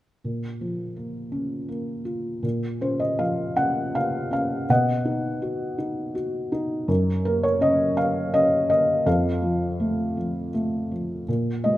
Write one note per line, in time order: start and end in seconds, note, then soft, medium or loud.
0.24 2.40 A#2 soft
0.61 2.02 F3 soft
0.96 1.67 A#3 soft
1.32 2.40 C#4 soft
1.69 2.41 A#3 soft
2.05 2.42 F4 soft
2.43 4.65 A#2 medium
2.81 3.54 C#4 soft
2.81 3.01 C5 medium
3.00 3.20 D#5 medium
3.19 4.65 F3 soft
3.19 3.54 F5 medium
3.56 4.30 C#4 soft
3.56 3.96 F#5 medium
3.95 4.67 F4 soft
3.95 4.31 F5 medium
4.31 4.68 C#4 soft
4.31 4.67 F5 medium
4.69 6.85 B2 medium
4.69 6.13 D#5 medium
4.69 6.12 F#5 medium
5.05 5.77 D#4 soft
5.42 6.13 F#4 soft
5.78 6.51 D#4 soft
6.15 6.87 F#4 medium
6.52 6.88 D#4 medium
6.88 9.02 F#2 medium
7.25 7.95 A#3 medium
7.25 7.42 A#4 medium
7.43 7.60 C#5 medium
7.61 8.32 C#4 medium
7.61 7.99 D#5 medium
7.96 8.68 A#3 soft
7.96 8.31 F5 medium
8.33 9.04 C#4 medium
8.33 8.68 D#5 medium
8.70 9.05 A#3 soft
8.70 9.07 D#5 medium
9.06 11.24 F2 medium
9.06 10.50 A4 medium
9.06 10.49 F5 medium
9.42 10.16 F3 soft
9.80 10.53 A3 soft
10.17 10.90 F3 soft
10.54 11.26 A3 soft
10.92 11.27 F3 soft
11.28 11.78 A#2 medium
11.64 11.78 G#3 soft
11.64 11.78 D#5 medium